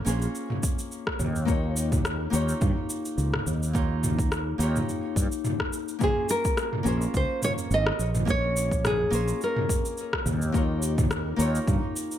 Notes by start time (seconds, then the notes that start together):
0.05 A#1 A#3 C#4 F4 G#4, cabasa
0.09 C5
0.22 cabasa
0.35 cabasa
0.50 mid tom
0.63 kick, cabasa
0.79 cabasa
0.92 cabasa
1.07 kick, cross-stick
1.19 D#2, mid tom, cabasa
1.36 cabasa
1.45 A#3 D#4 F4 G4, kick, cabasa
1.50 C#5
1.76 cabasa
1.92 kick, mid tom, cabasa
2.05 cross-stick, cabasa
2.30 D#2 A#3 D#4 F4 G4, cabasa
2.34 C#5
2.48 cabasa
2.61 G2, kick, mid tom, cabasa
2.90 cabasa
3.05 cabasa
3.18 C#2, cabasa
3.34 cross-stick, mid tom
3.46 D#2, cabasa
3.63 cabasa
3.73 A#3 D#4 F4 G4, kick, cabasa
3.77 C#5
4.03 mid tom, cabasa
4.19 kick, cabasa
4.32 cross-stick, cabasa
4.58 D#2 A#3 D#4 F4 G4, cabasa
4.63 C#5
4.76 mid tom, cabasa
4.89 cabasa
5.16 G2, kick, cabasa
5.32 cabasa
5.45 mid tom, cabasa
5.60 kick, cross-stick
5.73 cabasa
5.88 cabasa
5.99 A#3 C#4 F4 G#4, kick, mid tom, cabasa
6.03 G#4 C5
6.29 A#4, cabasa
6.45 kick, cabasa
6.57 cross-stick, cabasa
6.73 mid tom
6.83 A#1 A#3 C#4 F4 G#4, cabasa
6.88 C5
7.01 cabasa
7.14 C#2 C5, kick, cabasa
7.42 C#5, mid tom, cabasa
7.58 cabasa
7.70 G#1 D#5, cabasa
7.87 cross-stick
7.99 A#1, cabasa
8.15 mid tom, cabasa
8.25 A#3 C#4 F4 G#4, kick, cabasa
8.30 C#5
8.56 cabasa
8.71 kick, cabasa
8.85 G#4, cross-stick, mid tom, cabasa
9.10 A#1 A#3 C#4 F4 G#4, cabasa
9.15 C5
9.28 cabasa
9.41 A#4, cabasa
9.57 mid tom
9.69 kick, cabasa
9.85 cabasa
9.98 cabasa
10.13 kick, cross-stick
10.26 D#2, mid tom, cabasa
10.42 cabasa
10.52 A#3 D#4 F4 G4, kick, cabasa
10.56 C#5
10.82 cabasa
10.98 kick, mid tom, cabasa
11.11 cross-stick, cabasa
11.36 D#2 A#3 D#4 F4 G4, cabasa
11.41 C#5
11.55 cabasa
11.67 G2, kick, mid tom, cabasa
11.96 cabasa
12.11 cabasa